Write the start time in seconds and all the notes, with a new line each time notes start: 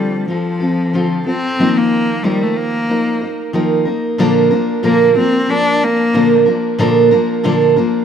Already playing: D3 F3 G3 C4 F4 A4
0.28 F3 C4 F4 A4
0.60 C4 F4 A4
0.94 D3 F3 C4 F4 A4
1.27 C4 F4 A4
1.59 D#3 F3 A#3 D#4 A#4
1.77 A#3
2.23 D#3 F3 G3 A#3 D#4 A#4
2.42 A3
2.57 A#3
2.89 F3 A#3 D#4 A#4
3.22 A#3 D#4 A#4
3.53 D#3 F3 A#3 D#4 A#4
3.85 A#3 D#4 A#4
4.18 A#2 D3 F3 A#3 D4 A#4
4.50 F3 A#3 D4 A#4
4.83 A#2 D3 F3 A#3 D4 A#4
5.16 F3 A#3 C4 D4 A#4
5.48 F3 A#3 D4 A#4
5.84 A#3
6.13 A#2 D3 F3 A#3 D4 A#4
6.46 F3 A#3 D4 A#4
6.78 A#2 D3 F3 A#3 D4 A#4
7.11 F3 A#3 D4 A#4
7.44 A#2 D3 F3 A#3 D4 A#4
7.76 F3 A#3 D4 A#4